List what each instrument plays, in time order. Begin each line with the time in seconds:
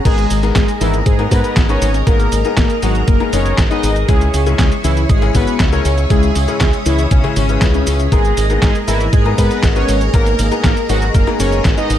0.05 fingered electric bass G#1, grand piano G#2 B3 D#4 G#4 A#4, analog polysynth G#3 G#4, string machine G#4 A#4 D#5 A#5, kick, closed hi-hat, crash, cabasa
0.18 closed hi-hat, cabasa
0.30 fingered electric bass G#1, open hi-hat, cabasa
0.43 grand piano G#2 B3 D#4 G#4 A#4, closed hi-hat, cabasa
0.56 fingered electric bass G#1, analog polysynth G#3 G#4, kick, snare, clap, closed hi-hat, cabasa
0.68 closed hi-hat, cabasa
0.81 fingered electric bass G#1, grand piano G#2 B3 D#4 G#4 A#4, analog polysynth E3 E4, open hi-hat, cabasa
0.94 closed hi-hat, cabasa
1.06 fingered electric bass G#2, analog polysynth G#3 G#4, kick, closed hi-hat, cabasa
1.19 grand piano G#2 B3 D#4 G#4 A#4, closed hi-hat
1.31 grand piano G#2 B3 D#4 G#4 A#4, fingered electric bass G#2, analog polysynth B3 B4, kick, open hi-hat, cabasa
1.44 closed hi-hat, cabasa
1.56 fingered electric bass G#1, kick, snare, clap, closed hi-hat, cabasa
1.69 grand piano G#2 B3 D#4 G#4 B4, analog polysynth C#4 C#5, closed hi-hat, cabasa
1.82 fingered electric bass G#1, open hi-hat, cabasa
1.94 closed hi-hat, cabasa
2.07 fingered electric bass G#1, grand piano G#2 B3 D#4 G#4 A#4, analog polysynth A#3 A#4, kick, closed hi-hat, cabasa
2.20 closed hi-hat, cabasa
2.32 fingered electric bass G#1, open hi-hat, cabasa
2.45 grand piano G#2 B3 D#4 G#4 A#4, closed hi-hat, cabasa
2.57 fingered electric bass G#1, analog polysynth A#3 A#4, kick, snare, clap, closed hi-hat, cabasa
2.70 closed hi-hat, cabasa
2.82 fingered electric bass G#1, grand piano G#2 B3 D#4 G#4 A#4, analog polysynth F#3 F#4, open hi-hat, cabasa
2.95 closed hi-hat, cabasa
3.08 fingered electric bass F#1, analog polysynth A#3 A#4, kick, closed hi-hat, cabasa
3.20 grand piano G#2 B3 D#4 G#4 A#4, closed hi-hat
3.33 fingered electric bass F#1, grand piano G#2 B3 D#4 G#4 A#4, analog polysynth C#4 C#5, open hi-hat, cabasa
3.46 closed hi-hat, cabasa
3.58 fingered electric bass G#1, kick, snare, clap, closed hi-hat, cabasa
3.70 grand piano G#2 B3 D#4 G#4 B4, analog polysynth D#4 D#5, closed hi-hat, cabasa
3.83 fingered electric bass G#1, open hi-hat, cabasa
3.96 closed hi-hat, cabasa
4.08 fingered electric bass C#2, grand piano C#3 G#3 C#4 E4 G#4, analog polysynth G#3 G#4, string machine C#5 E5 C#6, kick, closed hi-hat, cabasa
4.21 closed hi-hat, cabasa
4.34 fingered electric bass C#2, open hi-hat, cabasa
4.46 grand piano C#3 G#3 C#4 E4 G#4, closed hi-hat, cabasa
4.59 fingered electric bass C#2, analog polysynth G#3 G#4, kick, snare, clap, closed hi-hat, cabasa
4.72 closed hi-hat, cabasa
4.84 fingered electric bass C#2, grand piano C#3 G#3 C#4 E4 G#4, analog polysynth E3 E4, open hi-hat, cabasa
4.97 closed hi-hat, cabasa
5.09 fingered electric bass G#1, analog polysynth G#3 G#4, kick, closed hi-hat, cabasa
5.22 grand piano C#3 G#3 C#4 E4 G#4, closed hi-hat
5.34 fingered electric bass G#1, grand piano C#3 G#3 C#4 E4 F#4, analog polysynth B3 B4, kick, open hi-hat, cabasa
5.47 closed hi-hat, cabasa
5.60 fingered electric bass C#2, kick, snare, clap, closed hi-hat, cabasa
5.72 grand piano C#3 G#3 C#4 E4 A#4, analog polysynth C#4 C#5, closed hi-hat, cabasa
5.85 fingered electric bass C#2, open hi-hat, cabasa
5.98 closed hi-hat, cabasa
6.10 fingered electric bass C#2, grand piano C#3 G#3 C#4 E4 G#4, analog polysynth G#3 G#4, string machine D#6, kick, closed hi-hat, cabasa
6.23 closed hi-hat, cabasa
6.35 fingered electric bass C#2, open hi-hat, cabasa
6.48 grand piano C#3 G#3 C#4 E4 G#4, closed hi-hat, cabasa
6.61 fingered electric bass C#2, analog polysynth G#3 G#4, kick, snare, clap, closed hi-hat, cabasa
6.73 closed hi-hat, cabasa
6.86 fingered electric bass C#2, grand piano C#3 G#3 C#4 E4 G#4, analog polysynth E3 E4, open hi-hat, cabasa
6.99 closed hi-hat, cabasa
7.11 fingered electric bass B1, analog polysynth C#3 C#4, kick, closed hi-hat, cabasa
7.24 grand piano C#3 G#3 C#4 E4 G#4, closed hi-hat
7.36 fingered electric bass G#1, analog polysynth C#3 C#4, open hi-hat, cabasa
7.49 grand piano C#3 G#3 C#4 E4 B4, closed hi-hat, cabasa
7.62 fingered electric bass C#2, grand piano C#3 G#3 C#4 E4 B4, kick, snare, clap, closed hi-hat, cabasa
7.74 analog polysynth C#3 C#4, closed hi-hat, cabasa
7.87 fingered electric bass C#2, open hi-hat, cabasa
8.00 closed hi-hat, cabasa
8.12 fingered electric bass G#1, grand piano G#2 B3 D#4 G#4 A#4, analog polysynth G#3 G#4, string machine G#4 A#4 D#5 A#5, kick, closed hi-hat, cabasa
8.25 closed hi-hat, cabasa
8.37 fingered electric bass G#1, open hi-hat, cabasa
8.50 grand piano G#2 B3 D#4 G#4 A#4, closed hi-hat, cabasa
8.62 fingered electric bass G#1, analog polysynth G#3 G#4, kick, snare, clap, closed hi-hat, cabasa
8.75 closed hi-hat, cabasa
8.87 fingered electric bass G#1, grand piano G#2 B3 D#4 G#4 A#4, analog polysynth E3 E4, open hi-hat, cabasa
9.00 closed hi-hat, cabasa
9.13 fingered electric bass G#2, analog polysynth G#3 G#4, kick, closed hi-hat, cabasa
9.25 grand piano G#2 B3 D#4 G#4 A#4, closed hi-hat
9.38 fingered electric bass G#2, grand piano G#2 B3 D#4 G#4 A#4, analog polysynth B3 B4, kick, open hi-hat, cabasa
9.51 closed hi-hat, cabasa
9.63 fingered electric bass G#1, kick, snare, clap, closed hi-hat, cabasa
9.76 grand piano G#2 B3 D#4 G#4 B4, analog polysynth C#4 C#5, closed hi-hat, cabasa
9.89 fingered electric bass G#1, open hi-hat, cabasa
10.01 closed hi-hat, cabasa
10.14 fingered electric bass G#1, grand piano G#2 B3 D#4 G#4 A#4, analog polysynth A#3 A#4, kick, closed hi-hat, cabasa
10.26 closed hi-hat, cabasa
10.39 fingered electric bass G#1, open hi-hat, cabasa
10.51 grand piano G#2 B3 D#4 G#4 A#4, closed hi-hat, cabasa
10.64 fingered electric bass G#1, analog polysynth A#3 A#4, kick, snare, clap, closed hi-hat, cabasa
10.77 closed hi-hat, cabasa
10.89 fingered electric bass G#1, grand piano G#2 B3 D#4 G#4 A#4, analog polysynth F#3 F#4, open hi-hat, cabasa
11.02 closed hi-hat, cabasa
11.14 fingered electric bass F#1, analog polysynth A#3 A#4, kick, closed hi-hat, cabasa
11.27 grand piano G#2 B3 D#4 G#4 A#4, closed hi-hat
11.39 fingered electric bass F#1, grand piano G#2 B3 D#4 G#4 A#4, analog polysynth C#4 C#5, open hi-hat, cabasa
11.52 closed hi-hat, cabasa
11.65 fingered electric bass G#1, kick, snare, clap, closed hi-hat, cabasa
11.77 grand piano G#2 B3 D#4 G#4 B4, analog polysynth D#4 D#5, closed hi-hat, cabasa
11.90 fingered electric bass G#1, open hi-hat, cabasa